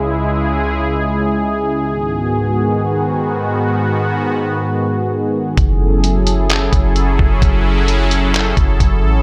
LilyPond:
<<
  \new Staff \with { instrumentName = "Analog synth pad" } { \time 4/4 \key fis \dorian \tempo 4 = 130 << { gis'1~ | gis'1~ | gis'1 | a'1~ |
a'1 | } \\ { <cis, cis gis e'>1 | <gis, dis b fis'>1~ | <gis, dis b fis'>1 | <fis cis' e' gis'>1~ |
<fis cis' e' gis'>1 | } >> }
  \new Staff \with { instrumentName = "808-style bass" } { \clef bass \time 4/4 \key fis \dorian r1 | r1 | r1 | fis,,2~ fis,,8 fis,,4 fis,,8 |
fis,,2~ fis,,8 fis,,8 fis,,8 a,,8 | }
  \new DrumStaff \with { instrumentName = "Drums" } \drummode { \time 4/4 r4 r4 r4 r4 | r4 r4 r4 r4 | r4 r4 r4 r4 | <hh bd>4 hh8 hh8 <hc hh>8 <hh bd>8 hh8 bd8 |
<hh bd>4 hh8 hh8 <hc hh>8 <hh bd>8 <hh bd>4 | }
>>